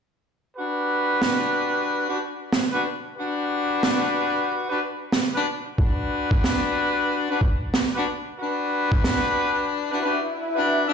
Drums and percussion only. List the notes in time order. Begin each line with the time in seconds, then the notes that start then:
1.22 snare
2.53 snare
3.83 snare
5.12 snare
5.78 kick
6.31 kick
6.44 snare
7.41 kick
7.74 snare
8.92 kick
9.04 snare